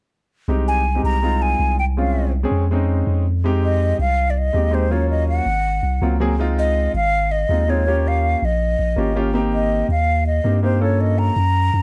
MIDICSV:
0, 0, Header, 1, 4, 480
1, 0, Start_track
1, 0, Key_signature, -4, "minor"
1, 0, Tempo, 369004
1, 630, Time_signature, 4, 2, 24, 8
1, 15381, End_track
2, 0, Start_track
2, 0, Title_t, "Flute"
2, 0, Program_c, 0, 73
2, 884, Note_on_c, 0, 80, 92
2, 1324, Note_off_c, 0, 80, 0
2, 1364, Note_on_c, 0, 82, 89
2, 1848, Note_on_c, 0, 80, 92
2, 1867, Note_off_c, 0, 82, 0
2, 2319, Note_off_c, 0, 80, 0
2, 2330, Note_on_c, 0, 79, 84
2, 2408, Note_off_c, 0, 79, 0
2, 2582, Note_on_c, 0, 77, 66
2, 3014, Note_off_c, 0, 77, 0
2, 4726, Note_on_c, 0, 75, 79
2, 5165, Note_off_c, 0, 75, 0
2, 5210, Note_on_c, 0, 77, 87
2, 5596, Note_on_c, 0, 74, 60
2, 5616, Note_off_c, 0, 77, 0
2, 5694, Note_on_c, 0, 75, 82
2, 5713, Note_off_c, 0, 74, 0
2, 6170, Note_on_c, 0, 72, 81
2, 6189, Note_off_c, 0, 75, 0
2, 6406, Note_on_c, 0, 73, 73
2, 6426, Note_off_c, 0, 72, 0
2, 6629, Note_off_c, 0, 73, 0
2, 6637, Note_on_c, 0, 75, 79
2, 6857, Note_off_c, 0, 75, 0
2, 6876, Note_on_c, 0, 78, 96
2, 8021, Note_off_c, 0, 78, 0
2, 8567, Note_on_c, 0, 75, 95
2, 9006, Note_off_c, 0, 75, 0
2, 9048, Note_on_c, 0, 77, 107
2, 9515, Note_on_c, 0, 75, 91
2, 9534, Note_off_c, 0, 77, 0
2, 10013, Note_on_c, 0, 73, 88
2, 10033, Note_off_c, 0, 75, 0
2, 10506, Note_on_c, 0, 77, 91
2, 10526, Note_off_c, 0, 73, 0
2, 10991, Note_on_c, 0, 75, 81
2, 11011, Note_off_c, 0, 77, 0
2, 11929, Note_off_c, 0, 75, 0
2, 12399, Note_on_c, 0, 75, 81
2, 12839, Note_off_c, 0, 75, 0
2, 12893, Note_on_c, 0, 77, 88
2, 13327, Note_off_c, 0, 77, 0
2, 13355, Note_on_c, 0, 75, 91
2, 13797, Note_off_c, 0, 75, 0
2, 13836, Note_on_c, 0, 72, 78
2, 14054, Note_off_c, 0, 72, 0
2, 14082, Note_on_c, 0, 73, 70
2, 14317, Note_on_c, 0, 75, 80
2, 14337, Note_off_c, 0, 73, 0
2, 14550, Note_on_c, 0, 82, 96
2, 14570, Note_off_c, 0, 75, 0
2, 15381, Note_off_c, 0, 82, 0
2, 15381, End_track
3, 0, Start_track
3, 0, Title_t, "Grand piano"
3, 0, Program_c, 1, 0
3, 627, Note_on_c, 1, 56, 64
3, 635, Note_on_c, 1, 60, 64
3, 640, Note_on_c, 1, 63, 66
3, 650, Note_on_c, 1, 67, 74
3, 1049, Note_off_c, 1, 56, 0
3, 1052, Note_off_c, 1, 60, 0
3, 1055, Note_off_c, 1, 63, 0
3, 1060, Note_off_c, 1, 67, 0
3, 1235, Note_on_c, 1, 56, 63
3, 1240, Note_on_c, 1, 60, 59
3, 1251, Note_on_c, 1, 63, 55
3, 1260, Note_on_c, 1, 67, 66
3, 1485, Note_off_c, 1, 56, 0
3, 1487, Note_off_c, 1, 60, 0
3, 1493, Note_off_c, 1, 63, 0
3, 1497, Note_off_c, 1, 67, 0
3, 1588, Note_on_c, 1, 56, 67
3, 1595, Note_on_c, 1, 60, 62
3, 1607, Note_on_c, 1, 63, 67
3, 1614, Note_on_c, 1, 65, 68
3, 2262, Note_off_c, 1, 56, 0
3, 2265, Note_off_c, 1, 60, 0
3, 2271, Note_off_c, 1, 63, 0
3, 2275, Note_off_c, 1, 65, 0
3, 2563, Note_on_c, 1, 56, 65
3, 2566, Note_on_c, 1, 60, 57
3, 2573, Note_on_c, 1, 61, 55
3, 2579, Note_on_c, 1, 65, 71
3, 2977, Note_off_c, 1, 56, 0
3, 2979, Note_off_c, 1, 60, 0
3, 2982, Note_off_c, 1, 61, 0
3, 2985, Note_off_c, 1, 65, 0
3, 3163, Note_on_c, 1, 56, 76
3, 3170, Note_on_c, 1, 60, 70
3, 3181, Note_on_c, 1, 61, 76
3, 3184, Note_on_c, 1, 68, 84
3, 3409, Note_off_c, 1, 56, 0
3, 3413, Note_off_c, 1, 60, 0
3, 3418, Note_off_c, 1, 61, 0
3, 3420, Note_off_c, 1, 68, 0
3, 3524, Note_on_c, 1, 56, 81
3, 3539, Note_on_c, 1, 60, 77
3, 3545, Note_on_c, 1, 61, 68
3, 3551, Note_on_c, 1, 63, 78
3, 4190, Note_off_c, 1, 56, 0
3, 4197, Note_off_c, 1, 60, 0
3, 4200, Note_off_c, 1, 61, 0
3, 4203, Note_off_c, 1, 63, 0
3, 4475, Note_on_c, 1, 56, 79
3, 4486, Note_on_c, 1, 60, 74
3, 4492, Note_on_c, 1, 63, 72
3, 4496, Note_on_c, 1, 67, 94
3, 5145, Note_off_c, 1, 56, 0
3, 5151, Note_off_c, 1, 60, 0
3, 5154, Note_off_c, 1, 63, 0
3, 5156, Note_off_c, 1, 67, 0
3, 5891, Note_on_c, 1, 56, 60
3, 5897, Note_on_c, 1, 60, 55
3, 5908, Note_on_c, 1, 63, 50
3, 5917, Note_on_c, 1, 67, 67
3, 6069, Note_off_c, 1, 56, 0
3, 6072, Note_off_c, 1, 60, 0
3, 6078, Note_off_c, 1, 63, 0
3, 6082, Note_off_c, 1, 67, 0
3, 6124, Note_on_c, 1, 56, 71
3, 6129, Note_on_c, 1, 60, 60
3, 6138, Note_on_c, 1, 63, 62
3, 6147, Note_on_c, 1, 67, 66
3, 6305, Note_off_c, 1, 56, 0
3, 6308, Note_off_c, 1, 60, 0
3, 6313, Note_off_c, 1, 63, 0
3, 6317, Note_off_c, 1, 67, 0
3, 6372, Note_on_c, 1, 54, 68
3, 6383, Note_on_c, 1, 58, 64
3, 6391, Note_on_c, 1, 65, 79
3, 6392, Note_on_c, 1, 61, 61
3, 7053, Note_off_c, 1, 54, 0
3, 7059, Note_off_c, 1, 58, 0
3, 7063, Note_off_c, 1, 65, 0
3, 7064, Note_off_c, 1, 61, 0
3, 7823, Note_on_c, 1, 54, 66
3, 7827, Note_on_c, 1, 58, 61
3, 7840, Note_on_c, 1, 60, 66
3, 7845, Note_on_c, 1, 65, 78
3, 7995, Note_off_c, 1, 54, 0
3, 7997, Note_off_c, 1, 58, 0
3, 8003, Note_off_c, 1, 60, 0
3, 8006, Note_off_c, 1, 65, 0
3, 8063, Note_on_c, 1, 54, 85
3, 8065, Note_on_c, 1, 58, 83
3, 8074, Note_on_c, 1, 60, 74
3, 8083, Note_on_c, 1, 68, 97
3, 8234, Note_off_c, 1, 54, 0
3, 8236, Note_off_c, 1, 58, 0
3, 8240, Note_off_c, 1, 60, 0
3, 8245, Note_off_c, 1, 68, 0
3, 8307, Note_on_c, 1, 56, 79
3, 8313, Note_on_c, 1, 60, 70
3, 8321, Note_on_c, 1, 63, 74
3, 8333, Note_on_c, 1, 65, 92
3, 8980, Note_off_c, 1, 56, 0
3, 8984, Note_off_c, 1, 60, 0
3, 8987, Note_off_c, 1, 63, 0
3, 8993, Note_off_c, 1, 65, 0
3, 9740, Note_on_c, 1, 56, 56
3, 9749, Note_on_c, 1, 60, 53
3, 9758, Note_on_c, 1, 63, 58
3, 9758, Note_on_c, 1, 65, 58
3, 9913, Note_off_c, 1, 56, 0
3, 9917, Note_off_c, 1, 60, 0
3, 9922, Note_off_c, 1, 63, 0
3, 9922, Note_off_c, 1, 65, 0
3, 9993, Note_on_c, 1, 56, 71
3, 10000, Note_on_c, 1, 60, 67
3, 10005, Note_on_c, 1, 63, 69
3, 10017, Note_on_c, 1, 65, 70
3, 10159, Note_off_c, 1, 56, 0
3, 10163, Note_off_c, 1, 60, 0
3, 10165, Note_off_c, 1, 63, 0
3, 10171, Note_off_c, 1, 65, 0
3, 10231, Note_on_c, 1, 58, 65
3, 10234, Note_on_c, 1, 61, 66
3, 10247, Note_on_c, 1, 65, 62
3, 10252, Note_on_c, 1, 67, 73
3, 10902, Note_off_c, 1, 58, 0
3, 10903, Note_off_c, 1, 61, 0
3, 10910, Note_off_c, 1, 65, 0
3, 10912, Note_off_c, 1, 67, 0
3, 11657, Note_on_c, 1, 58, 64
3, 11671, Note_on_c, 1, 61, 60
3, 11677, Note_on_c, 1, 65, 62
3, 11686, Note_on_c, 1, 67, 78
3, 11831, Note_off_c, 1, 58, 0
3, 11838, Note_off_c, 1, 61, 0
3, 11840, Note_off_c, 1, 65, 0
3, 11845, Note_off_c, 1, 67, 0
3, 11902, Note_on_c, 1, 58, 75
3, 11906, Note_on_c, 1, 61, 67
3, 11918, Note_on_c, 1, 65, 79
3, 11924, Note_on_c, 1, 67, 90
3, 12073, Note_off_c, 1, 58, 0
3, 12075, Note_off_c, 1, 61, 0
3, 12081, Note_off_c, 1, 65, 0
3, 12084, Note_off_c, 1, 67, 0
3, 12143, Note_on_c, 1, 58, 77
3, 12150, Note_on_c, 1, 60, 72
3, 12155, Note_on_c, 1, 63, 72
3, 12161, Note_on_c, 1, 67, 91
3, 12817, Note_off_c, 1, 58, 0
3, 12820, Note_off_c, 1, 60, 0
3, 12823, Note_off_c, 1, 63, 0
3, 12826, Note_off_c, 1, 67, 0
3, 13581, Note_on_c, 1, 58, 65
3, 13587, Note_on_c, 1, 60, 51
3, 13599, Note_on_c, 1, 63, 48
3, 13606, Note_on_c, 1, 67, 59
3, 13751, Note_off_c, 1, 58, 0
3, 13755, Note_off_c, 1, 60, 0
3, 13760, Note_off_c, 1, 63, 0
3, 13764, Note_off_c, 1, 67, 0
3, 13821, Note_on_c, 1, 58, 65
3, 13826, Note_on_c, 1, 60, 62
3, 13830, Note_on_c, 1, 63, 62
3, 13840, Note_on_c, 1, 67, 75
3, 13991, Note_off_c, 1, 58, 0
3, 13994, Note_off_c, 1, 60, 0
3, 13996, Note_off_c, 1, 63, 0
3, 14001, Note_off_c, 1, 67, 0
3, 14044, Note_on_c, 1, 58, 65
3, 14055, Note_on_c, 1, 61, 59
3, 14065, Note_on_c, 1, 65, 55
3, 14068, Note_on_c, 1, 69, 73
3, 14726, Note_off_c, 1, 58, 0
3, 14731, Note_off_c, 1, 61, 0
3, 14736, Note_off_c, 1, 65, 0
3, 14738, Note_off_c, 1, 69, 0
3, 15381, End_track
4, 0, Start_track
4, 0, Title_t, "Sub bass"
4, 0, Program_c, 2, 38
4, 625, Note_on_c, 2, 36, 84
4, 1297, Note_off_c, 2, 36, 0
4, 1348, Note_on_c, 2, 36, 82
4, 2019, Note_off_c, 2, 36, 0
4, 2074, Note_on_c, 2, 36, 82
4, 3197, Note_off_c, 2, 36, 0
4, 3271, Note_on_c, 2, 41, 83
4, 3941, Note_off_c, 2, 41, 0
4, 3992, Note_on_c, 2, 41, 82
4, 5116, Note_off_c, 2, 41, 0
4, 5189, Note_on_c, 2, 36, 85
4, 5860, Note_off_c, 2, 36, 0
4, 5908, Note_on_c, 2, 39, 82
4, 7033, Note_off_c, 2, 39, 0
4, 7102, Note_on_c, 2, 32, 80
4, 7552, Note_off_c, 2, 32, 0
4, 7581, Note_on_c, 2, 36, 65
4, 7809, Note_off_c, 2, 36, 0
4, 7827, Note_on_c, 2, 37, 75
4, 8952, Note_off_c, 2, 37, 0
4, 9028, Note_on_c, 2, 32, 88
4, 9698, Note_off_c, 2, 32, 0
4, 9744, Note_on_c, 2, 39, 80
4, 10870, Note_off_c, 2, 39, 0
4, 10957, Note_on_c, 2, 34, 94
4, 11399, Note_off_c, 2, 34, 0
4, 11433, Note_on_c, 2, 34, 66
4, 11654, Note_off_c, 2, 34, 0
4, 11665, Note_on_c, 2, 32, 83
4, 12789, Note_off_c, 2, 32, 0
4, 12862, Note_on_c, 2, 39, 88
4, 13533, Note_off_c, 2, 39, 0
4, 13587, Note_on_c, 2, 43, 79
4, 14709, Note_off_c, 2, 43, 0
4, 14782, Note_on_c, 2, 42, 87
4, 15229, Note_off_c, 2, 42, 0
4, 15267, Note_on_c, 2, 42, 67
4, 15381, Note_off_c, 2, 42, 0
4, 15381, End_track
0, 0, End_of_file